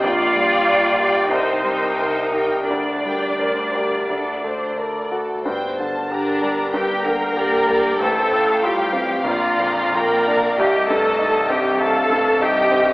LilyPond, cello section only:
\new Staff \with { instrumentName = "Cello section" } { \time 4/4 \key g \minor \tempo 4 = 94 f'2 ees'2 | d'2. r4 | r4 d4 g8 bes4. | a4 g4 f4 bes4 |
g8 a4 g8 a4 g4 | }